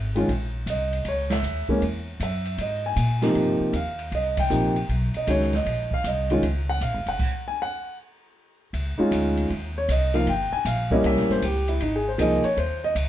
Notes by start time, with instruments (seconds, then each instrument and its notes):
Already playing: upright bass G#1
0.15 grand piano D#3 G#3 C#4 F4, ride
0.28 upright bass A#1, kick, ride
0.66 upright bass C2, grand piano D#5, kick, hi-hat pedal, ride
0.93 ride
1.05 upright bass C#2, grand piano C#5, kick, ride
1.30 grand piano E5, snare, ride
1.43 upright bass D#2, hi-hat pedal
1.69 grand piano E3 G#3 A#3 C#4, muted upright bass stroke, kick
1.82 upright bass E2, ride
2.20 upright bass F#2, grand piano E5, kick, hi-hat pedal, ride
2.45 ride
2.58 upright bass G#2, grand piano D#5, kick, ride
2.86 grand piano G#5
2.96 upright bass A#2, kick, hi-hat pedal, ride
3.22 grand piano C3 F3 A#3 D#4, snare, ride
3.34 upright bass G2, kick, ride
3.60 muted upright bass stroke
3.73 upright bass D#2, grand piano F5, kick, hi-hat pedal, ride
3.99 ride
4.12 upright bass C2, grand piano D#5, kick, ride
4.37 grand piano G5, kick, ride
4.50 upright bass A#1, grand piano C3 F3 A#3 D#4, hi-hat pedal
4.76 ride
4.89 upright bass B1, kick, ride
5.14 grand piano D#5, muted upright bass stroke, ride
5.27 upright bass C#2, grand piano D#3 G#3 C#4 F#4 C#5, kick, hi-hat pedal, ride
5.40 snare
5.53 grand piano D#5, snare, ride
5.65 upright bass A#1, kick, ride
5.91 grand piano F5, kick
6.04 upright bass C2, grand piano D#5, kick, hi-hat pedal, ride
6.30 grand piano D#3 G#3 C#4 F4, ride
6.42 upright bass C#2, kick, ride
6.69 grand piano F#5
6.81 upright bass A#1, grand piano F5, kick, hi-hat pedal, ride
6.94 upright bass G#1
7.06 upright bass F1, grand piano F#5, ride
7.19 kick, crash
7.48 grand piano G#5
7.62 grand piano F#5
8.73 upright bass C#2, kick, ride
8.98 grand piano G#3 C#4 D#4 F4, muted upright bass stroke
9.11 upright bass D2, kick, hi-hat pedal, ride
9.37 ride
9.50 upright bass D#2, kick, ride
9.78 grand piano C#5
9.88 upright bass C2, grand piano D#5, kick, hi-hat pedal, ride
10.14 grand piano F3 A#3 D#4 F4 F5, ride
10.27 upright bass G1, grand piano G5, kick, ride
10.53 grand piano G#5, muted upright bass stroke
10.65 upright bass A#1, grand piano F5, kick, hi-hat pedal, ride
10.91 grand piano G3 A#3 C#4 E4 D#5, kick
11.04 upright bass C2, grand piano E5, ride
11.17 upright bass A#1, snare
11.29 upright bass G1, grand piano C5, snare
11.42 upright bass C#2, grand piano G4, kick, hi-hat pedal, ride
11.68 grand piano E4, ride
11.80 upright bass G#1, grand piano D#4, kick, ride
11.96 grand piano G#4
12.08 grand piano C5
12.18 upright bass C2, grand piano F3 A#3 D#4 G#4 D#5, kick, hi-hat pedal, ride
12.44 grand piano C#5, muted upright bass stroke, ride
12.57 upright bass D#2, grand piano C5, kick, ride
12.84 grand piano D#5
12.95 upright bass C#2, kick, hi-hat pedal, ride